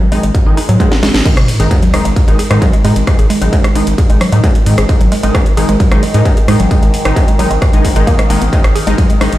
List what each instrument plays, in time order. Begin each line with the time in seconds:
0.01 synth arpeggio sound F#3
0.12 analog synth bass G#1, synth stab D#3 G#3 D#4, synth arpeggio sound G#3, open hi-hat
0.23 analog synth bass G#1, synth arpeggio sound G#3, closed hi-hat
0.35 kick, closed hi-hat, swell
0.46 analog synth bass G#1, synth stab D#3 G#3 D#4
0.57 synth arpeggio sound D#4, open hi-hat
0.69 analog synth bass G#2, synth arpeggio sound F#3, closed hi-hat
0.80 synth stab D#3 G#3 D#4, synth arpeggio sound G#3, kick, closed hi-hat
0.92 synth arpeggio sound B3, snare
1.03 analog synth bass G#1, synth arpeggio sound G#3, snare, open hi-hat
1.14 analog synth bass G#1, synth arpeggio sound B3, snare, closed hi-hat
1.25 synth drone G#2 D#3, synth stab D#3 G#3 D#4, synth arpeggio sound G#3, kick, closed hi-hat, crash, ride, sub drop
1.37 analog synth bass G#1, cross-stick, closed hi-hat, ride
1.48 open hi-hat, ride
1.60 analog synth bass G#1, synth stab D#3 G#3 D#4, synth arpeggio sound G#4, closed hi-hat, ride
1.71 synth arpeggio sound G#3, kick, closed hi-hat, ride
1.82 synth arpeggio sound F#3, closed hi-hat, ride
1.94 analog synth bass G#1, synth stab D#3 G#3 D#4, synth arpeggio sound G#3, cross-stick, open hi-hat, ride
2.05 analog synth bass G#1, synth arpeggio sound G#3, closed hi-hat, ride
2.16 kick, closed hi-hat, ride
2.28 analog synth bass G#1, synth stab D#3 G#3 D#4, closed hi-hat, ride
2.39 synth arpeggio sound G#4, open hi-hat, ride
2.51 analog synth bass G#2, synth stab D#3 G#3 D#4, synth arpeggio sound G#3, cross-stick, closed hi-hat, ride
2.62 synth arpeggio sound F#3, kick, closed hi-hat, ride
2.73 synth arpeggio sound G#3, closed hi-hat, ride
2.85 analog synth bass G#2, synth stab D#3 G#3 D#4, synth arpeggio sound G#3, open hi-hat, ride
2.96 analog synth bass G#1, closed hi-hat, ride
3.07 synth stab D#3 G#3 D#4, kick, cross-stick, closed hi-hat, ride
3.19 analog synth bass G#1, synth arpeggio sound G#4, closed hi-hat, ride
3.30 synth arpeggio sound G#3, open hi-hat, ride
3.42 analog synth bass G#1, synth stab D#3 G#3 D#4, synth arpeggio sound F#3, closed hi-hat, ride
3.53 synth arpeggio sound G#3, kick, closed hi-hat, ride
3.64 synth arpeggio sound G#3, cross-stick, closed hi-hat, ride
3.75 analog synth bass G#1, synth stab D#3 G#3 D#4, open hi-hat, ride
3.87 analog synth bass G#1, closed hi-hat, ride
3.98 synth arpeggio sound G#4, kick, closed hi-hat, ride
4.10 analog synth bass G#1, synth stab D#3 G#3 D#4, synth arpeggio sound G#3, closed hi-hat, ride
4.21 synth arpeggio sound F#3, cross-stick, open hi-hat, ride
4.32 analog synth bass G#2, synth stab D#3 G#3 D#4, synth arpeggio sound G#3, closed hi-hat, ride
4.44 synth arpeggio sound G#3, kick, closed hi-hat, ride
4.55 closed hi-hat, ride
4.66 analog synth bass G#2, synth stab D#3 G#3 D#4, open hi-hat, ride
4.78 analog synth bass G#1, synth arpeggio sound G#4, cross-stick, closed hi-hat, ride
4.89 synth stab D#3 G#3 D#4, synth arpeggio sound G#3, kick, closed hi-hat, ride
5.01 analog synth bass G#1, synth arpeggio sound F#3, closed hi-hat, ride
5.12 synth arpeggio sound G#3, open hi-hat, ride
5.23 analog synth bass G#1, synth stab D#3 G#3 D#4, synth arpeggio sound G#3, closed hi-hat, ride
5.35 kick, cross-stick, closed hi-hat, ride
5.46 closed hi-hat, ride
5.57 analog synth bass G#1, synth stab D#3 G#3 D#4, synth arpeggio sound G#4, open hi-hat, ride
5.69 analog synth bass G#1, synth arpeggio sound G#3, closed hi-hat, ride
5.80 synth arpeggio sound F#3, kick, closed hi-hat, ride
5.92 analog synth bass G#1, synth stab D#3 G#3 D#4, synth arpeggio sound G#3, cross-stick, closed hi-hat, ride
6.03 synth arpeggio sound G#3, open hi-hat, ride
6.14 analog synth bass G#2, synth stab D#3 G#3 D#4, closed hi-hat, ride
6.25 kick, closed hi-hat, ride
6.37 synth arpeggio sound G#4, closed hi-hat, ride
6.48 analog synth bass G#2, synth stab D#3 G#3 D#4, synth arpeggio sound G#3, cross-stick, open hi-hat, ride
6.60 analog synth bass G#1, synth arpeggio sound F#3, closed hi-hat, ride
6.71 synth stab D#3 G#3 D#4, synth arpeggio sound G#3, kick, closed hi-hat, ride
6.82 analog synth bass G#1, synth arpeggio sound G#3, closed hi-hat, ride
6.94 open hi-hat, ride
7.05 analog synth bass G#1, synth stab D#3 G#3 D#4, cross-stick, closed hi-hat, ride
7.16 synth arpeggio sound G#4, kick, closed hi-hat, ride
7.28 synth arpeggio sound G#3, closed hi-hat, ride
7.39 analog synth bass G#1, synth stab D#3 G#3 D#4, synth arpeggio sound F#3, open hi-hat, ride
7.51 analog synth bass G#1, synth arpeggio sound G#3, closed hi-hat, ride
7.62 synth arpeggio sound G#3, kick, cross-stick, closed hi-hat, ride
7.73 analog synth bass G#1, synth stab D#3 G#3 D#4, closed hi-hat, ride
7.85 kick, open hi-hat, ride
7.96 analog synth bass G#1, synth stab D#3 G#3 D#4, synth arpeggio sound G#3, closed hi-hat, ride
8.07 synth arpeggio sound A#3, kick, closed hi-hat, ride
8.19 synth arpeggio sound G#3, cross-stick, closed hi-hat, ride
8.30 analog synth bass G#1, synth stab D#3 G#3 D#4, synth arpeggio sound A#3, open hi-hat, ride
8.41 analog synth bass G#1, synth arpeggio sound B3, closed hi-hat, ride
8.53 synth stab D#3 G#3 D#4, kick, closed hi-hat, ride
8.64 analog synth bass G#1, cross-stick, closed hi-hat, ride
8.75 synth arpeggio sound G#4, open hi-hat, ride
8.87 analog synth bass G#1, synth stab D#3 G#3 D#4, synth arpeggio sound G#3, closed hi-hat, ride
8.98 synth arpeggio sound F#3, kick, closed hi-hat, ride
9.10 synth arpeggio sound G#3, closed hi-hat, ride
9.21 analog synth bass G#1, synth stab D#3 G#3 D#4, synth arpeggio sound G#3, cross-stick, open hi-hat, ride
9.33 analog synth bass G#1, closed hi-hat, ride